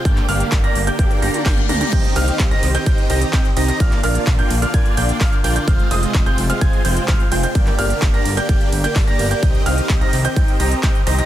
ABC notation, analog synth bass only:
X:1
M:4/4
L:1/8
Q:1/4=128
K:Cm
V:1 name="Analog synth bass" clef=bass
G,,, G,,, G,,, G,,, G,,, G,,, G,,, D,, | C,, C,, C,, C,, C,, C,, C,, C,, | B,,, B,,, B,,, B,,, B,,, B,,, B,,, B,,, | F,,, F,,, F,,, F,,, F,,, F,,, F,,, F,,, |
G,,, G,,, G,,, G,,, G,,, G,,, G,,, G,,, | C,, C,, C,, C,, C,, C,, C,, C,, |]